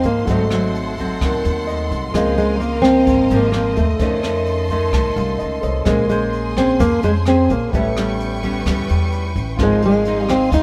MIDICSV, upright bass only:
0, 0, Header, 1, 2, 480
1, 0, Start_track
1, 0, Key_signature, -4, "major"
1, 0, Tempo, 465839
1, 287, Time_signature, 4, 2, 24, 8
1, 10952, End_track
2, 0, Start_track
2, 0, Title_t, "Upright bass"
2, 0, Program_c, 0, 32
2, 42, Note_on_c, 0, 32, 83
2, 267, Note_off_c, 0, 32, 0
2, 281, Note_on_c, 0, 32, 94
2, 1203, Note_off_c, 0, 32, 0
2, 1249, Note_on_c, 0, 39, 83
2, 1471, Note_off_c, 0, 39, 0
2, 1494, Note_on_c, 0, 39, 101
2, 1937, Note_off_c, 0, 39, 0
2, 1972, Note_on_c, 0, 36, 84
2, 2193, Note_off_c, 0, 36, 0
2, 2213, Note_on_c, 0, 37, 91
2, 3128, Note_off_c, 0, 37, 0
2, 3159, Note_on_c, 0, 32, 77
2, 3386, Note_off_c, 0, 32, 0
2, 3410, Note_on_c, 0, 32, 105
2, 3854, Note_off_c, 0, 32, 0
2, 3882, Note_on_c, 0, 39, 78
2, 4107, Note_off_c, 0, 39, 0
2, 4118, Note_on_c, 0, 41, 90
2, 5040, Note_off_c, 0, 41, 0
2, 5082, Note_on_c, 0, 36, 78
2, 5307, Note_off_c, 0, 36, 0
2, 5320, Note_on_c, 0, 36, 99
2, 5546, Note_off_c, 0, 36, 0
2, 5581, Note_on_c, 0, 37, 76
2, 5790, Note_off_c, 0, 37, 0
2, 5801, Note_on_c, 0, 36, 88
2, 6019, Note_off_c, 0, 36, 0
2, 6038, Note_on_c, 0, 34, 94
2, 6959, Note_off_c, 0, 34, 0
2, 7004, Note_on_c, 0, 41, 75
2, 7227, Note_off_c, 0, 41, 0
2, 7247, Note_on_c, 0, 41, 90
2, 7692, Note_off_c, 0, 41, 0
2, 7724, Note_on_c, 0, 34, 84
2, 7947, Note_off_c, 0, 34, 0
2, 7967, Note_on_c, 0, 33, 83
2, 8885, Note_off_c, 0, 33, 0
2, 8925, Note_on_c, 0, 40, 82
2, 9148, Note_off_c, 0, 40, 0
2, 9172, Note_on_c, 0, 40, 93
2, 9615, Note_off_c, 0, 40, 0
2, 9640, Note_on_c, 0, 33, 92
2, 9865, Note_off_c, 0, 33, 0
2, 9879, Note_on_c, 0, 32, 85
2, 10801, Note_off_c, 0, 32, 0
2, 10839, Note_on_c, 0, 39, 82
2, 10952, Note_off_c, 0, 39, 0
2, 10952, End_track
0, 0, End_of_file